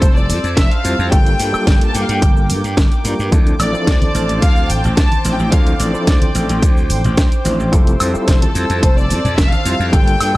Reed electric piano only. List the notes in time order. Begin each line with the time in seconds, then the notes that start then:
Already playing: G3 C4 E4 F4 A4
0.84 G3 C4 E4 F4 C5
1.11 G3 A#3 D4 F4 A4
1.52 G3 A#3 D4 F4 A4
3.04 G3 A#3 D4 F4 A#4
3.31 F3 C4 D4 E4 A4
3.73 F3 C4 D4 E4 A4
5.24 F3 C4 D4 E4 C5
5.52 F3 C4 D4 E4 A4
5.93 F3 C4 D4 E4 A4
7.44 F3 C4 D4 E4 C5
7.72 G3 C4 E4 F4 A4
8.13 G3 C4 E4 F4 A4
9.65 G3 C4 E4 F4 C5
9.92 G3 A#3 D4 F4 A4
10.34 G3